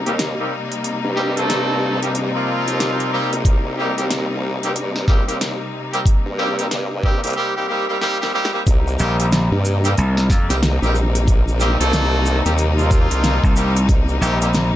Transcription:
Already playing: string section C3 G3 A#3 D#4
0.06 wobble bass D#2, horn section G3 A#3 C4 D#4 G4, closed hi-hat
0.19 snare, closed hi-hat
0.39 horn section G3 A#3 C4 D#4 G4
0.72 closed hi-hat
0.84 closed hi-hat
1.04 wobble bass G2
1.17 horn section G3 A#3 C4 D#4 G4, snare
1.36 horn section A3 A#3 C4 D#4 A4, closed hi-hat
1.50 snare, closed hi-hat
2.02 wobble bass G2, horn section G3 A#3 C4 D#4 G4, closed hi-hat
2.15 closed hi-hat
2.34 horn section F3 A#3 C4 D#4 F4
2.67 wobble bass D#2, closed hi-hat
2.80 snare, closed hi-hat
3.00 closed hi-hat
3.12 horn section G3 A#3 C4 D#4 G4
3.32 wobble bass A#1, closed hi-hat
3.45 wobble bass C2, kick, closed hi-hat
3.77 horn section G3 A#3 C4 D#4 G4
3.97 wobble bass D#2, horn section G3 A#3 C4 D#4 G4, closed hi-hat
4.10 snare, closed hi-hat
4.30 wobble bass C2
4.63 wobble bass G2, horn section G3 A#3 C4 D#4 G4, closed hi-hat
4.76 closed hi-hat
4.96 snare
5.08 wobble bass A#1, horn section G3 A#3 C4 D#4 G4, kick, snare
5.28 wobble bass D#2, horn section G3 A#3 C4 D#4 G4, closed hi-hat
5.41 snare, closed hi-hat
5.93 horn section G3 A#3 C4 D#4 G4, closed hi-hat
6.06 kick, closed hi-hat
6.26 wobble bass G2
6.38 horn section G3 A#3 C4 D#4 G4, snare
6.58 horn section G3 A#3 C4 D#4 G4, closed hi-hat
6.71 snare, closed hi-hat
7.03 horn section G3 A#3 C4 D#4 G4, kick
7.24 wobble bass C2, horn section G3 A#3 C4 D#4 G4, closed hi-hat
7.27 closed hi-hat
7.30 closed hi-hat
7.33 horn section G3 A#3 C4 D#4 G4, closed hi-hat
7.56 horn section G3 A#3 C4 D#4 G4
7.69 horn section G3 A#3 C4 D#4 G4
7.89 horn section G3 A#3 C4 D#4 G4
8.01 horn section G3 A#3 C4 D#4 G4, snare
8.21 horn section G3 A#3 C4 D#4 G4, snare
8.34 horn section G3 A#3 C4 D#4 G4
8.45 snare
8.53 horn section G3 A#3 C4 D#4 G4
8.67 wobble bass C2, string section C3 G3 A#3 D#4, kick, closed hi-hat, shaker
8.87 shaker
8.99 slap bass A#1, horn section G3 A#3 C4 D#4 G4, shaker
9.19 horn section G3 A#3 C4 D#4 G4, closed hi-hat, shaker
9.32 snare, closed hi-hat, shaker
9.52 wobble bass G2
9.65 shaker
9.84 horn section G3 A#3 C4 D#4 G4, closed hi-hat, shaker
9.98 slap bass C2, closed hi-hat, shaker
10.17 snare, shaker
10.30 slap bass F2, kick, snare, shaker
10.49 wobble bass C2, horn section G3 A#3 C4 D#4 G4, snare, closed hi-hat, shaker
10.63 snare, closed hi-hat, shaker
10.82 wobble bass A#1, horn section G3 A#3 C4 D#4 G4, shaker
10.95 shaker
11.15 closed hi-hat, shaker
11.28 kick, closed hi-hat, shaker
11.48 shaker
11.60 horn section G3 A#3 C4 D#4 G4, snare, shaker
11.80 wobble bass C2, horn section A3 A#3 C4 D#4 A4, closed hi-hat, shaker
11.93 snare, closed hi-hat, shaker
12.26 shaker
12.45 wobble bass D#2, horn section G3 A#3 C4 D#4 G4, closed hi-hat, shaker
12.58 closed hi-hat, shaker
12.78 horn section F3 A#3 C4 D#4 F4, shaker
12.91 kick, shaker
13.11 wobble bass C2, closed hi-hat, shaker
13.24 snare, closed hi-hat, shaker
13.44 slap bass C2, kick, shaker
13.56 horn section G3 A#3 C4 D#4 G4, shaker
13.76 closed hi-hat, shaker
13.89 wobble bass C2, kick, closed hi-hat, shaker
14.09 shaker
14.21 slap bass A#1, horn section G3 A#3 C4 D#4 G4, shaker
14.41 horn section G3 A#3 C4 D#4 G4, closed hi-hat, shaker
14.54 snare, closed hi-hat, shaker

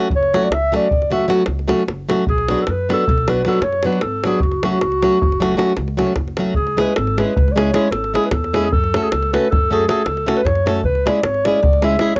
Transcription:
0.10 upright bass F#1, davul low
0.16 clarinet C#5
0.23 davul high
0.34 nylon-string guitar F#3 A3 C#4 F#4, davul high
0.43 clarinet D5, davul high
0.50 upright bass C#2, clarinet E5, davul high
0.72 nylon-string guitar F#3 A3 C#4 F#4, davul high
0.76 clarinet D5
0.91 upright bass F#1, davul low
1.02 davul high
1.10 nylon-string guitar F#3 A3 C#4 F#4, clarinet E5, davul high
1.28 nylon-string guitar F#3 A3 C#4 F#4, davul high
1.39 davul high
1.46 upright bass C#2, davul high
1.59 davul high
1.68 nylon-string guitar F#3 A3 C#4 F#4, davul high
1.79 davul high
1.88 upright bass F#1, davul high
2.09 nylon-string guitar F#3 A3 C#4 F#4, davul high
2.27 upright bass B1, clarinet G#4, davul low
2.38 davul high
2.48 nylon-string guitar F#3 B3 D4 F#4, davul high
2.58 clarinet A4, davul high
2.67 upright bass F#2, davul high
2.71 clarinet B4
2.89 nylon-string guitar F#3 B3 D4 F#4, davul high
2.93 clarinet A4
3.07 upright bass B1, davul low
3.18 davul high
3.27 nylon-string guitar F#3 B3 D4 F#4, clarinet B4, davul high
3.45 nylon-string guitar F#3 B3 D4 F#4, davul high
3.49 clarinet A4, davul high
3.61 upright bass F#2, clarinet C#5, davul high
3.72 davul high
3.83 nylon-string guitar F#3 B3 D4, clarinet B4, davul high
3.87 nylon-string guitar F#4
3.92 davul high
4.01 upright bass G#1, clarinet A4, davul high
4.24 nylon-string guitar F#3 B3 D4 F#4, clarinet G#4, davul high
4.40 upright bass F#1, clarinet F#4, davul low
4.51 davul high
4.63 nylon-string guitar F#3 A3 C#4 F#4, davul high
4.73 davul high
4.81 upright bass C#2, davul high
4.92 davul high
5.02 nylon-string guitar F#3 A3 C#4 F#4, davul high
5.13 davul high
5.22 upright bass F#1, davul low
5.32 davul high
5.40 nylon-string guitar F#3 A3 C#4 F#4, davul high
5.51 davul high
5.57 nylon-string guitar F#3 A3 C#4 F#4, davul high
5.70 davul high
5.77 upright bass C#2, davul high
5.88 davul high
5.97 nylon-string guitar F#3 A3 C#4 F#4, davul high
6.07 davul high
6.16 upright bass F#1, davul high, davul low
6.28 davul high
6.37 nylon-string guitar F#3 A3 C#4 F#4, davul high
6.46 davul high
6.54 upright bass C#2, clarinet G#4, davul low
6.67 davul high
6.77 nylon-string guitar G#3 C#4 E4 G#4, clarinet B4, davul high
6.88 davul high
6.96 upright bass G#1, clarinet A4, davul high
7.07 davul high
7.17 nylon-string guitar G#3 C#4 E4 G#4, clarinet B4, davul high
7.36 upright bass C#2, davul low
7.48 clarinet D5, davul high
7.56 nylon-string guitar G#3 C#4 E4 G#4, clarinet C#5, davul high
7.74 nylon-string guitar G#3 C#4 E4 G#4, davul high
7.91 upright bass G#1, clarinet A4, davul high
8.04 davul high
8.14 nylon-string guitar G#3 C#4 E4 G#4, clarinet G#4, davul high
8.24 clarinet B4, davul high
8.31 upright bass E2, clarinet A4, davul high, davul low
8.44 davul high
8.53 nylon-string guitar G#3 C#4 E4 G#4, davul high
8.63 clarinet G#4, davul high
8.72 upright bass F#2, clarinet A4, davul low
8.84 davul high
8.94 nylon-string guitar A3 C#4 F#4 A4, davul high
9.03 clarinet G#4
9.11 upright bass C#2, clarinet A4, davul high
9.23 davul high
9.33 nylon-string guitar A3 C#4 F#4 A4, clarinet B4, davul high
9.45 davul high
9.51 upright bass F#2, clarinet A4, davul low
9.71 nylon-string guitar A3 C#4 F#4 A4, clarinet G#4
9.89 nylon-string guitar A3 C#4 F#4 A4, clarinet G#4, davul high
10.04 upright bass C#2, clarinet A4, davul high
10.17 davul high
10.27 nylon-string guitar A3 C#4 F#4 A4, davul high
10.36 clarinet B4, davul high
10.45 upright bass F#2, clarinet C#5, davul high, davul low
10.55 davul high
10.66 nylon-string guitar A3 C#4 F#4 A4, davul high
10.75 davul high
10.83 upright bass C#2, clarinet B4, davul low
10.95 davul high
11.06 nylon-string guitar G#3 C#4 E4 G#4, clarinet D5, davul high
11.16 davul high
11.23 upright bass G#1, clarinet C#5, davul high
11.34 davul high
11.45 nylon-string guitar G#3 C#4 E4 G#4, clarinet D5, davul high
11.56 davul high
11.63 upright bass C#2, davul low
11.73 davul high
11.82 nylon-string guitar G#3 C#4 E4 G#4, clarinet E5, davul high
11.99 nylon-string guitar G#3 C#4 E4 G#4, davul high
12.15 upright bass G#1, clarinet C#5, davul high

